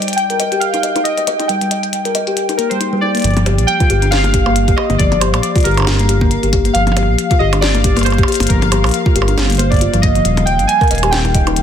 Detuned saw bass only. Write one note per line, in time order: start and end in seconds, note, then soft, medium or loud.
3.24 3.60 G1 loud
3.59 3.66 A#1 medium
3.90 4.73 G1 medium
4.90 4.97 G1 medium
5.00 5.35 G1 loud
5.34 5.41 A#1 medium
5.65 6.38 G1 loud
6.43 6.71 G1 medium
6.75 7.10 G1 loud
7.09 7.16 A#1 medium
7.40 8.24 G1 medium
8.40 8.47 G1 loud
8.50 8.86 G1 loud
8.84 8.91 A#1 medium
9.16 9.88 G1 loud
9.94 10.21 G1 medium
10.25 10.61 D#1 loud
10.59 10.66 G1 medium
10.91 11.62 D#1 loud